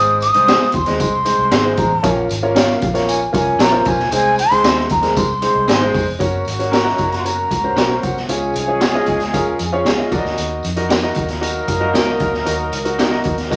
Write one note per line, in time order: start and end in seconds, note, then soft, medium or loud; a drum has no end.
0.00 0.29 G#1 loud
0.00 0.19 G#3 medium
0.00 0.19 C4 medium
0.00 0.20 D#4 medium
0.00 0.20 G#4 medium
0.00 0.20 C5 medium
0.00 0.19 D#6 loud
0.20 0.70 D#6 loud
0.20 closed hi-hat medium
0.20 tambourine medium
0.34 0.58 C2 medium
0.34 0.66 G#3 medium
0.34 0.67 C4 medium
0.34 0.67 D#4 medium
0.34 0.67 G#4 medium
0.34 0.67 C5 medium
0.34 closed hi-hat medium
0.47 0.62 C4 medium
0.47 0.63 D#4 medium
0.47 0.63 G#4 medium
0.47 0.63 C5 loud
0.47 snare loud
0.47 closed hi-hat medium
0.47 tambourine loud
0.61 snare soft
0.72 0.85 D#2 loud
0.72 0.98 C6 loud
0.72 kick medium
0.72 closed hi-hat medium
0.72 tambourine soft
0.86 0.99 D#2 medium
0.86 1.11 G#3 medium
0.86 1.11 C4 medium
0.86 1.11 D#4 medium
0.86 1.11 G#4 medium
0.86 1.11 D#5 medium
0.86 snare soft
0.86 closed hi-hat medium
1.00 1.33 C2 loud
1.00 1.74 C6 medium
1.00 kick medium
1.00 closed hi-hat medium
1.00 tambourine loud
1.25 1.49 G#3 medium
1.25 1.49 C4 medium
1.25 1.50 D#4 medium
1.25 1.50 G#4 medium
1.25 1.50 C5 medium
1.25 closed hi-hat medium
1.25 tambourine medium
1.38 1.50 C2 loud
1.51 1.74 G#1 loud
1.51 1.67 C4 medium
1.51 1.67 D#4 medium
1.51 1.67 G#4 medium
1.51 1.67 C5 medium
1.51 snare loud
1.51 closed hi-hat loud
1.51 tambourine loud
1.64 1.88 G#3 medium
1.64 1.89 C4 medium
1.64 1.89 D#4 medium
1.64 1.89 G#4 medium
1.64 1.89 C5 medium
1.77 2.00 A1 loud
1.77 2.25 A#5 medium
1.77 kick loud
1.77 closed hi-hat medium
1.77 tambourine medium
2.03 2.26 A#1 loud
2.03 2.27 A#3 medium
2.03 2.27 C#4 medium
2.03 2.28 F4 medium
2.03 2.28 A#4 medium
2.03 2.28 C#5 medium
2.03 kick loud
2.03 closed hi-hat loud
2.03 tambourine medium
2.29 2.74 G#1 medium
2.29 closed hi-hat medium
2.29 tambourine medium
2.42 2.75 A#3 medium
2.42 2.75 C#4 medium
2.42 2.75 F4 medium
2.42 2.75 A#4 medium
2.42 2.75 C#5 medium
2.55 2.70 C#4 loud
2.55 2.71 F4 loud
2.55 2.71 A#4 loud
2.55 2.71 C#5 loud
2.55 3.05 F5 medium
2.55 snare loud
2.55 closed hi-hat medium
2.55 tambourine loud
2.70 snare soft
2.81 3.27 A#1 medium
2.81 kick medium
2.81 closed hi-hat medium
2.81 tambourine soft
2.94 3.18 A#3 medium
2.94 3.18 C#4 medium
2.94 3.19 F4 medium
2.94 3.19 A#4 medium
2.94 3.19 C#5 medium
2.94 snare soft
2.94 closed hi-hat medium
3.08 3.32 G#5 medium
3.08 closed hi-hat medium
3.08 tambourine loud
3.33 3.56 C2 loud
3.33 3.57 A#3 medium
3.33 3.57 C#4 medium
3.33 3.57 F4 medium
3.33 3.58 A#4 medium
3.33 3.57 C#5 medium
3.33 3.63 G#5 medium
3.33 kick medium
3.33 closed hi-hat medium
3.33 tambourine medium
3.59 3.82 A#1 loud
3.59 3.74 C#4 loud
3.59 3.75 F4 medium
3.59 3.75 A#4 loud
3.59 3.75 C#5 loud
3.59 3.80 A#5 loud
3.59 snare loud
3.59 closed hi-hat loud
3.59 tambourine loud
3.72 3.97 A#3 medium
3.72 3.96 C#4 medium
3.72 3.97 F4 medium
3.72 3.97 A#4 medium
3.72 3.97 C5 medium
3.80 3.89 A#5 medium
3.85 4.08 B1 medium
3.85 4.13 G#5 loud
3.85 kick loud
3.85 closed hi-hat medium
3.85 tambourine medium
3.99 snare soft
4.11 4.45 C2 loud
4.11 4.36 G#3 medium
4.11 4.36 C4 medium
4.11 4.36 D#4 medium
4.11 4.36 G#4 medium
4.11 4.36 C5 medium
4.11 closed hi-hat loud
4.11 tambourine medium
4.15 4.38 G#5 loud
4.36 4.87 C6 loud
4.36 closed hi-hat medium
4.36 tambourine medium
4.51 4.64 C#2 medium
4.51 4.83 G#3 medium
4.51 4.83 C4 medium
4.51 4.83 D#4 medium
4.51 4.83 G#4 medium
4.51 4.83 C5 medium
4.51 closed hi-hat medium
4.64 4.86 D#2 loud
4.64 4.79 C4 medium
4.64 4.79 D#4 medium
4.64 4.79 G#4 medium
4.64 4.80 C5 medium
4.64 snare loud
4.64 closed hi-hat loud
4.64 tambourine loud
4.78 snare soft
4.89 5.13 D#2 medium
4.89 5.19 A#5 loud
4.89 kick medium
4.89 closed hi-hat medium
4.89 tambourine soft
5.02 5.26 G#3 medium
5.02 5.27 C4 medium
5.02 5.27 D#4 medium
5.02 5.27 G#4 medium
5.02 5.27 A#4 medium
5.02 snare soft
5.02 closed hi-hat medium
5.16 5.50 C2 medium
5.16 5.95 C6 loud
5.16 kick loud
5.16 closed hi-hat medium
5.16 tambourine loud
5.42 5.66 G#3 medium
5.42 5.66 C4 medium
5.42 5.66 D#4 medium
5.42 5.66 G#4 medium
5.42 5.66 C5 medium
5.42 closed hi-hat medium
5.42 tambourine medium
5.55 5.66 C2 medium
5.68 5.91 G#1 medium
5.68 5.83 C4 medium
5.68 5.83 D#4 medium
5.68 5.83 G#4 medium
5.68 5.83 C5 loud
5.68 snare loud
5.68 closed hi-hat loud
5.68 tambourine medium
5.81 6.05 G#3 medium
5.81 6.05 C4 medium
5.81 6.05 D#4 medium
5.81 6.05 G#4 medium
5.81 6.05 C5 loud
5.94 6.17 F1 medium
5.94 kick medium
5.94 open hi-hat medium
5.94 tambourine medium
6.19 6.43 F#1 loud
6.19 7.99 C#3 medium
6.19 7.99 F#3 medium
6.19 7.99 A#3 medium
6.19 6.44 C#4 medium
6.19 7.99 F#4 medium
6.19 6.44 F#4 medium
6.19 6.44 A#4 medium
6.19 6.44 C#5 medium
6.19 kick loud
6.19 closed hi-hat loud
6.19 tambourine medium
6.45 6.91 G#1 medium
6.45 closed hi-hat medium
6.45 tambourine soft
6.59 6.75 C#4 medium
6.59 6.75 F#4 medium
6.59 6.76 A#4 medium
6.59 6.76 C#5 medium
6.59 closed hi-hat medium
6.71 6.87 C#4 medium
6.71 6.87 F#4 medium
6.71 6.87 A#4 medium
6.71 6.88 C#5 medium
6.71 7.14 A#5 medium
6.71 snare loud
6.71 closed hi-hat medium
6.71 tambourine medium
6.84 7.09 C#4 medium
6.84 7.09 F#4 medium
6.84 7.09 A#4 medium
6.84 7.10 D#5 medium
6.84 snare soft
6.98 7.44 F#1 medium
6.98 kick medium
6.98 closed hi-hat medium
6.98 tambourine soft
7.12 snare soft
7.12 closed hi-hat medium
7.19 7.27 C6 medium
7.25 7.49 C#4 medium
7.25 7.49 F#4 medium
7.25 7.49 A#4 medium
7.25 7.49 C#5 medium
7.25 8.03 A#5 loud
7.25 closed hi-hat medium
7.25 tambourine loud
7.50 7.73 C#2 medium
7.50 kick medium
7.50 closed hi-hat medium
7.50 tambourine soft
7.64 7.80 C#4 medium
7.64 7.80 F#4 medium
7.64 7.80 A#4 medium
7.64 7.80 C5 medium
7.76 7.99 B1 medium
7.76 7.91 C#4 medium
7.76 7.92 F#4 medium
7.76 7.92 A#4 medium
7.76 7.92 C#5 medium
7.76 snare loud
7.76 closed hi-hat loud
7.76 tambourine medium
7.89 8.14 C#4 medium
7.89 8.14 F#4 medium
7.89 8.14 A#4 medium
7.89 8.14 C5 medium
8.03 8.25 C2 medium
8.03 8.28 F#5 medium
8.03 kick medium
8.03 closed hi-hat medium
8.03 tambourine soft
8.17 snare soft
8.29 8.51 C#2 medium
8.29 9.83 F3 medium
8.29 9.83 G#3 medium
8.29 8.53 C#4 medium
8.29 9.83 C#4 medium
8.29 8.53 F4 medium
8.29 8.53 G#4 medium
8.29 9.83 G#4 loud
8.29 8.53 C#5 medium
8.29 10.08 G#5 medium
8.29 closed hi-hat medium
8.29 tambourine medium
8.54 9.00 C2 medium
8.54 closed hi-hat medium
8.54 tambourine medium
8.68 8.84 C#4 medium
8.68 8.84 F4 medium
8.68 8.84 G#4 medium
8.68 8.84 C#5 medium
8.80 8.96 C#4 medium
8.80 8.96 F4 medium
8.80 8.96 G#4 medium
8.80 8.97 C#5 medium
8.80 snare loud
8.80 closed hi-hat medium
8.80 tambourine loud
8.94 9.18 C#4 medium
8.94 9.19 F4 medium
8.94 9.19 G#4 medium
8.94 9.19 D#5 loud
9.06 9.53 C#2 medium
9.06 kick medium
9.06 closed hi-hat medium
9.06 tambourine soft
9.20 snare soft
9.20 closed hi-hat soft
9.33 9.57 C#4 medium
9.33 9.57 F4 medium
9.33 9.58 G#4 medium
9.33 9.58 A#4 medium
9.33 kick medium
9.33 closed hi-hat medium
9.33 tambourine medium
9.59 9.82 F2 medium
9.59 closed hi-hat medium
9.59 tambourine medium
9.73 9.89 C#4 medium
9.73 9.89 F4 medium
9.73 9.89 G#4 medium
9.73 9.89 C#5 loud
9.85 9.97 C#2 medium
9.85 10.00 C#4 medium
9.85 10.01 F4 medium
9.85 10.01 G#4 medium
9.85 10.01 C#5 medium
9.85 snare loud
9.85 closed hi-hat medium
9.85 tambourine loud
9.98 10.12 C#4 medium
9.98 10.12 F4 medium
9.98 10.12 G#4 medium
9.98 10.12 D#5 medium
10.11 10.23 D#2 medium
10.11 10.64 D#4 medium
10.11 10.64 F#4 medium
10.11 10.64 A#4 medium
10.11 10.18 D5 medium
10.11 kick medium
10.11 closed hi-hat medium
10.11 tambourine medium
10.19 10.67 D#5 loud
10.24 10.36 D2 medium
10.24 snare soft
10.38 10.60 D#2 medium
10.38 closed hi-hat medium
10.38 tambourine medium
10.63 11.09 F2 loud
10.63 closed hi-hat medium
10.63 tambourine medium
10.76 10.93 D#4 medium
10.76 10.93 F#4 medium
10.76 10.93 A#4 medium
10.76 10.93 D#5 loud
10.76 closed hi-hat soft
10.89 11.04 D#4 medium
10.89 11.05 F#4 medium
10.89 11.05 A#4 medium
10.89 11.05 D#5 loud
10.89 snare loud
10.89 closed hi-hat medium
10.89 tambourine loud
11.02 11.27 D#4 medium
11.02 11.27 F#4 medium
11.02 11.27 A#4 medium
11.02 11.27 D#5 loud
11.02 snare soft
11.14 11.61 D#2 loud
11.14 13.56 F#3 medium
11.14 13.56 A#3 medium
11.14 13.56 D#4 medium
11.14 13.56 A#4 loud
11.14 kick medium
11.14 closed hi-hat medium
11.14 tambourine soft
11.28 snare soft
11.28 closed hi-hat soft
11.41 11.66 D#4 medium
11.41 11.66 F#4 medium
11.41 11.66 A#4 medium
11.41 11.66 D#5 loud
11.41 closed hi-hat medium
11.41 tambourine loud
11.68 11.91 F#2 medium
11.68 kick medium
11.68 closed hi-hat medium
11.68 tambourine medium
11.80 11.97 D#4 medium
11.80 11.97 F#4 medium
11.80 11.97 A#4 medium
11.80 11.97 D#5 medium
11.94 12.17 C#2 medium
11.94 12.09 D#4 medium
11.94 12.09 F#4 loud
11.94 12.10 A#4 medium
11.94 12.10 D#5 medium
11.94 snare loud
11.94 closed hi-hat loud
11.94 tambourine medium
12.07 12.31 D#4 medium
12.07 12.31 F#4 medium
12.07 12.31 A#4 medium
12.07 12.31 D#5 medium
12.20 12.43 D2 medium
12.20 kick medium
12.20 closed hi-hat medium
12.20 tambourine soft
12.34 snare soft
12.45 12.69 D#2 medium
12.45 12.70 D#4 medium
12.45 12.70 F#4 medium
12.45 12.70 A#4 medium
12.45 12.70 D#5 loud
12.45 closed hi-hat loud
12.45 tambourine medium
12.72 13.17 C#2 medium
12.72 closed hi-hat medium
12.72 tambourine soft
12.85 13.01 D#4 medium
12.85 13.01 F#4 medium
12.85 13.02 A#4 medium
12.85 13.02 D#5 medium
12.85 closed hi-hat soft
12.99 13.14 D#4 medium
12.99 13.14 F#4 medium
12.99 13.14 A#4 medium
12.99 13.14 D#5 medium
12.99 snare loud
12.99 closed hi-hat medium
12.99 tambourine loud
13.10 13.35 D#4 medium
13.10 13.35 F#4 medium
13.10 13.35 A#4 medium
13.10 13.35 D#5 loud
13.10 snare soft
13.24 13.56 D#2 medium
13.24 kick medium
13.24 closed hi-hat medium
13.24 tambourine soft
13.38 snare soft
13.38 closed hi-hat soft
13.50 13.56 D#4 medium
13.50 13.56 F#4 medium
13.50 13.56 A#4 medium
13.50 13.56 D#5 loud
13.50 kick medium
13.50 closed hi-hat medium
13.50 tambourine loud